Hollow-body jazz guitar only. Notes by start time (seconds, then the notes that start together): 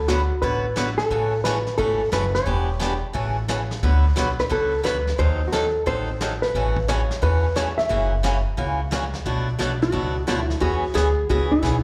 0.08 F#4
0.42 B4
0.98 A4
1.44 B4
1.78 A4
2.13 B4
2.35 C#5
4.40 B4
4.52 A4
4.85 B4
5.19 C5
5.48 F#4
5.53 A4
5.87 C5
6.42 B4
6.89 C#5
7.23 B4
7.56 C#5
7.78 E5
9.83 F#4
10.28 E4
10.61 F#4
10.95 G#4
11.30 F#4
11.52 E4